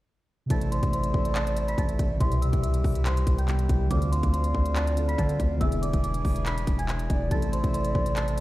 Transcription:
0.46 C3 A3
0.50 A1 A3 C4 E4 A4 D5 A5 A6, kick, closed hi-hat
0.61 closed hi-hat
0.72 C5 C6, closed hi-hat
0.83 A1, kick, closed hi-hat
0.93 C5 C6, closed hi-hat
1.04 closed hi-hat
1.14 A1, kick
1.25 closed hi-hat
1.35 A5 A6, clap, closed hi-hat
1.47 closed hi-hat
1.57 closed hi-hat
1.68 B5 B6, closed hi-hat
1.78 A1 A5 A6, kick, closed hi-hat
1.89 closed hi-hat
1.99 A1, kick, closed hi-hat
2.17 C2 B2 C3 E3 G3 C5 E5 C6, kick, closed hi-hat
2.22 E4 G4
2.32 closed hi-hat
2.42 E5 E6, closed hi-hat
2.53 C2, kick, closed hi-hat
2.63 E5 E6, closed hi-hat
2.74 closed hi-hat
2.84 C2, kick, open hi-hat
2.95 closed hi-hat
3.05 C5 C6, clap, closed hi-hat
3.17 closed hi-hat
3.27 C2, kick, closed hi-hat
3.38 G5 G6, closed hi-hat
3.47 C3 B3 E4 G4, clap, closed hi-hat
3.59 closed hi-hat
3.69 C2, kick, closed hi-hat
3.87 D2 D3 C4 F4 D5 D6, kick, closed hi-hat
3.91 F4 A4 D5
4.02 closed hi-hat
4.12 C5 C6, closed hi-hat
4.23 D2, kick, closed hi-hat
4.33 C5 C6, closed hi-hat
4.44 closed hi-hat
4.55 D2, kick
4.66 closed hi-hat
4.76 A5 A6, clap, closed hi-hat
4.87 closed hi-hat
4.95 D3 C4 F4 A4, closed hi-hat
5.08 B5 B6, closed hi-hat
5.18 D3 A5 A6, kick, closed hi-hat
5.29 closed hi-hat
5.40 D2, kick, closed hi-hat
5.57 D3 B3 D4 G#4 E6
5.61 E1 E3 E4 G#4 E5, kick, closed hi-hat
5.72 closed hi-hat
5.82 D5 D6, closed hi-hat
5.93 E1, kick, closed hi-hat
6.03 D5 D6, closed hi-hat
6.14 closed hi-hat
6.25 E1, kick, open hi-hat
6.36 closed hi-hat
6.46 B5 B6, clap, closed hi-hat
6.58 closed hi-hat
6.67 E1, kick, closed hi-hat
6.79 G#5 G#6, closed hi-hat
6.88 E5, clap, closed hi-hat
6.99 closed hi-hat
7.10 E1 D5, kick, closed hi-hat
7.27 C3 A3
7.31 A1 A3 C4 E4 A4 A5 A6, kick, closed hi-hat
7.42 closed hi-hat
7.52 C5 C6, closed hi-hat
7.64 A1, kick, closed hi-hat
7.74 C5 C6, closed hi-hat
7.85 closed hi-hat
7.95 A1, kick
8.06 closed hi-hat
8.16 A5 A6, clap, closed hi-hat
8.28 closed hi-hat

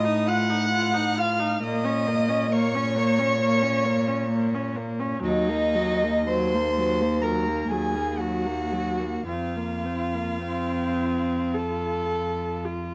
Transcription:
Already playing: A2 D#5 D#6
0.05 D#4
0.27 F4 F#5 F#6
0.50 D#4
0.71 F4
0.94 D#4
1.17 F4 F5 F6
1.40 D#4
1.62 A#2 A#3 D#5 D#6
1.84 C#4
2.07 A#3
2.29 C#4
2.52 A#3 C#5 C#6
2.75 C#4
2.96 A#3
3.19 C#4
3.40 A#3
3.62 C#4
3.85 A#3
4.07 C#4
4.31 A#3
4.55 C#4
4.76 A#3
5.00 C#4
5.23 D#2 F#3 D#4 D#5
5.49 A#3
5.75 F#3
6.03 A#3
6.28 F#3 C5 C6
6.55 A#3
6.78 F#3
7.01 A#3
7.22 F#3 A#4 A#5
7.48 A#3
7.68 F#3 G#4 G#5
7.96 A#3
8.18 F#3 F#4 F#5
8.46 A#3
8.72 F#3
9.00 A#3
9.26 F2 C4 F4 F5
9.57 A#3
9.85 C4
10.15 A#3
10.43 C4
11.54 A4
12.65 F4

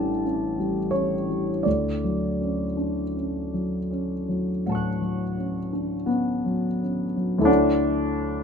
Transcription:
Already playing: A1 G3 C#4 D4 A5
0.24 C#4
0.59 G3
0.91 C#4 C#5
1.29 G3
1.63 D2 D5
2.04 F#3
2.41 C#4
2.77 D4
3.16 C#4
3.54 F#3
3.91 C#4
4.29 F#3
4.66 A2 F#5 A5
4.72 C#6 F#6
5.01 F#3
5.37 C#4
5.73 D4
6.06 B3 C#4
6.46 F#3
6.82 C#4
7.17 F#3
7.38 D2 E4 A4
7.44 D4 C#5 F#5

